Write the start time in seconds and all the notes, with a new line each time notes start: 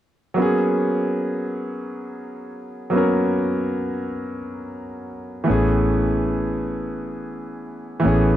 0.34 F#3 A#3 B3
0.40 C#4 G#4
2.90 F#3 A#3 B3
2.96 C#4 A#4
5.44 E3 A3 B3
5.49 A1 C#4 G#4
8.00 E3 A3 B3
8.05 A1 C#4 G#4